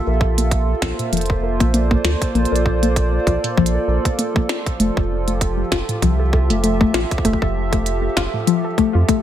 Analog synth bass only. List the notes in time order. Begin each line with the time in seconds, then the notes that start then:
0.07 A#1
0.82 A#1
1.13 F1
1.60 A#1
2.05 D2
2.35 A#1
2.52 A#1
3.27 A#1
3.58 A#1
3.88 A#1
4.80 F1
4.97 F1
5.72 F1
6.02 C2
6.50 F1
6.94 A1
7.25 F1
7.42 F1
8.17 F1
8.95 F2